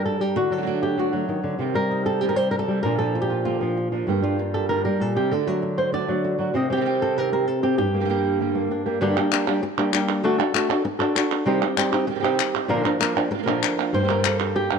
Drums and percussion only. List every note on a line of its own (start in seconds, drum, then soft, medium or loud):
9.32 clap medium
9.47 clap soft
9.78 clap medium
9.93 clap medium
10.09 clap soft
10.40 clap soft
10.55 clap medium
11.16 clap medium
11.62 clap medium
11.78 clap medium
12.25 clap medium
12.39 clap medium
12.55 clap soft
13.01 clap medium
13.48 clap soft
13.63 clap medium
13.79 clap soft
14.24 clap medium
14.40 clap soft
14.70 clap soft